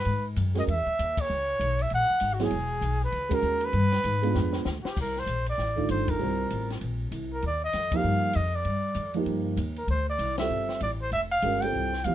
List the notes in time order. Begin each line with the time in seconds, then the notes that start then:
Already playing: B4
0.05 G#2, ride
0.36 F#2, hi-hat pedal, ride
0.54 G#3 C#4 F#4 A#4, snare, ride
0.59 D#5
0.67 E2 E5, ride
0.87 muted upright bass stroke, kick
0.99 D#2, hi-hat pedal, ride
1.17 C#5, kick, ride
1.30 C#2
1.60 B1, hi-hat pedal, ride
1.79 E5, ride
1.90 A#1 F#5, ride
2.10 muted upright bass stroke
2.20 G#1, hi-hat pedal, ride
2.34 F#4
2.39 F#3 B3 E4 G#4, snare, ride
2.44 G#4
2.51 E1, ride
2.81 B1, hi-hat pedal, ride
3.04 B4
3.12 C#2, ride
3.29 G#3 C#4 F#4 A#4, kick, ride
3.34 A#4
3.42 D#2, hi-hat pedal
3.61 ride
3.65 B4
3.73 G2, ride
3.92 snare, ride
4.04 G#2, hi-hat pedal, ride
4.22 G#3 B3 D4 F4, ride
4.34 F2, snare
4.53 snare
4.65 D2, snare, hi-hat pedal
4.82 F#4, muted upright bass stroke, snare
4.89 G4
4.97 C2, kick, crash
5.01 A#4
5.16 C5, snare
5.26 A#1, hi-hat pedal, ride
5.46 D5, ride
5.58 A1, snare
5.76 D#3 A3 D4 F4, kick
5.89 G1 C5, hi-hat pedal, ride
6.08 A#4, kick, ride
6.19 C2 G3 C4 F4 A#4
6.50 A1, hi-hat pedal, ride
6.70 snare, ride
6.81 A#1, ride
7.12 C2, hi-hat pedal, ride
7.33 A#4
7.42 D#2, ride
7.47 D5
7.64 D#5
7.73 F2, snare, hi-hat pedal, ride
7.92 F3 A#3 D#4 G4, kick, ride
7.96 F5
8.04 G2
8.33 F2 D#5, hi-hat pedal, ride
8.55 D5
8.65 G2, ride
8.95 F2, hi-hat pedal, ride
9.14 F3 A#3 D#4 G4, ride
9.26 G2, ride
9.57 D#2, hi-hat pedal, ride
9.76 A#4, ride
9.87 D2 C5, ride
10.10 D5
10.19 C2, hi-hat pedal, ride
10.38 G3 C4 F4 A4 E5, snare, ride
10.49 G1
10.69 snare
10.80 A1 D5, hi-hat pedal, ride
11.02 C5
11.11 F1 E5, ride
11.31 F5, ride
11.42 G1 G#3 C#4 F#4 A#4, hi-hat pedal, ride
11.61 G3 C4 F4 A4 G5, ride
11.73 C2
11.93 snare
12.04 E2 F3 B3 E4 G4 F5, hi-hat pedal, ride